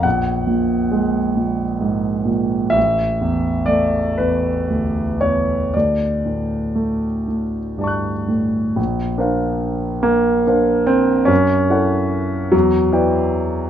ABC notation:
X:1
M:6/8
L:1/8
Q:3/8=45
K:D
V:1 name="Grand piano"
f4- f z | e2 d B2 c | d3 z [dac'f']2 | z3 _B,2 =C |
C3 F,3 |]
V:2 name="Grand piano" clef=bass
^A,,, ^A,, ^G, A,, ^G,, A,, | A,,, E,, A, E,, D,, E,, | D,, A,, A, A,, G,, A,, | _B,,, [D_B=c=f]3 [DBcf]2 |
F,, [EAcf]2 E,, [EBdg]2 |]